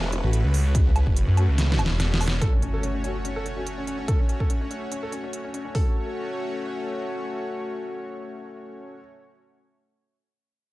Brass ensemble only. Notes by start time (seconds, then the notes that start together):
0.24 A3 C#4 F#4
1.37 A3 C#4 F#4
3.04 A3 C#4 F#4
3.57 A3 C#4 F#4
5.75 A3 C#4 F#4